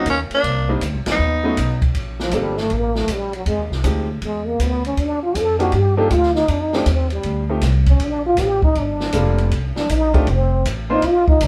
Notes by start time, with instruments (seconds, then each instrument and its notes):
0.06 upright bass D#2, trombone A#3, kick, hi-hat pedal, ride
0.10 tenor saxophone C#4
0.30 trombone A#3, muted upright bass stroke, ride
0.34 tenor saxophone D4
0.43 upright bass C2, kick, ride
0.69 upright piano G3 A#3 C4 D4 D#4
0.81 upright bass D2, kick, hi-hat pedal, ride
0.94 upright bass C2
1.06 upright bass A#1, trombone B3, snare, ride
1.12 tenor saxophone D#4
1.19 upright bass D#2
1.44 upright piano F#3 A3 B3 C#4 D#4
1.57 upright bass B1, kick, hi-hat pedal, ride
1.82 kick, ride
1.94 upright bass A#1, kick, ride
2.20 trombone F3, snare
2.31 upright bass G1, upright piano F3 A#3 C4 D4 A4, trombone G3, kick, hi-hat pedal, ride
2.57 trombone A3, snare
2.70 upright bass A1, trombone A#3, kick, ride
2.95 trombone A3, snare
3.08 upright bass A#1, kick, hi-hat pedal, ride
3.12 trombone G3
3.33 trombone F#3, ride
3.46 upright bass F2, trombone G#3, kick, ride
3.57 upright bass D#2
3.70 upright bass C2, snare
3.84 upright bass D2, upright piano F3 G#3 C4 D#4 G4, kick, hi-hat pedal, ride
4.22 upright bass E2, trombone G#3, kick, ride
4.47 trombone A#3
4.59 upright bass D2, trombone B3, kick, hi-hat pedal, ride
4.85 trombone C#4, ride
4.97 upright bass D#2, kick, ride
5.01 trombone D4
5.23 trombone F4
5.34 upright bass F2, trombone A4, kick, hi-hat pedal, ride
5.59 upright piano F3 A#3 D4 D#4 G4, trombone F#4, ride
5.72 upright bass G2, trombone G4, kick, ride
5.97 upright piano F3 A#3 D4 D#4 G4, trombone A4
6.10 upright bass D2, trombone F4, kick, hi-hat pedal, ride
6.23 snare
6.35 trombone D#4, snare
6.48 upright bass F2, trombone D4, kick, ride
6.63 trombone D#4
6.73 upright piano F3 A3 C4 D#4 G4, trombone D4, snare
6.86 upright bass D#2, trombone C4, kick, hi-hat pedal, ride
7.10 trombone G3, ride
7.23 upright bass D2, kick, ride
7.49 upright piano F3 A3 C4 D#4 G4
7.61 upright bass C2, kick, snare, hi-hat pedal, ride
7.86 trombone C#4, kick, ride
8.00 upright bass A#1, kick, ride
8.04 trombone D4
8.26 trombone F4
8.37 upright bass A1, kick, snare, hi-hat pedal, ride
8.41 trombone G4
8.62 trombone D#4, kick
8.75 upright bass G1, kick, ride
8.79 trombone D4
9.00 snare
9.12 upright bass F1, upright piano G3 A#3 D4 F4 A4, kick, hi-hat pedal, ride
9.38 ride
9.51 upright bass C2, kick, ride
9.76 trombone D4, muted upright bass stroke, snare
9.89 upright bass A#1, trombone D#4, kick, hi-hat pedal, ride
10.14 upright piano A3 C4 D#4 F4 G4, trombone D4, kick, ride
10.27 upright bass F1, trombone C4, kick, ride
10.65 upright bass A1, kick, hi-hat pedal, ride
10.90 upright piano A#3 C4 D4 F4 C5, trombone D#4
11.02 upright bass A#1, kick, ride
11.07 trombone F4
11.28 trombone D#4, kick
11.41 upright bass C2, trombone D4, kick, hi-hat pedal, ride